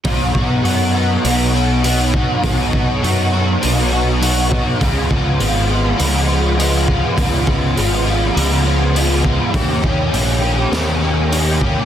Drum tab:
HH |o-o-o-o-|o-o-o-o-|o-o-o-o-|o-o-o-o-|
SD |--------|--------|--------|--------|
BD |oo-----o|oo-----o|oo-----o|oo-----o|

HH |o-o-o-o-|
SD |----o---|
BD |oo-----o|